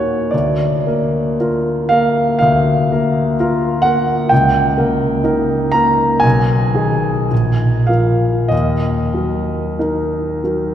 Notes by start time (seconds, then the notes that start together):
Already playing: A#2 A#3 D#4 F#4 C#5 F#5
0.31 D2 D5
0.87 A#3 A#4
1.40 F4 A#4
1.89 A#3 A#4 F5
2.39 D2 F5
2.92 A#3 A#4
3.40 F4 A#4
3.82 A#3 A#4 F#5
4.29 C#2 G5
4.78 A#3 A#4
5.24 D#4 A#4
5.72 A#3 A#4 A#5
6.20 B1 G#5
6.75 D#3 G#4
7.31 A#1
7.87 F3 A#4 F5
8.48 D#2 D#5
9.14 F#3 A#4
9.79 D#4 A#4
10.44 F#3 A#4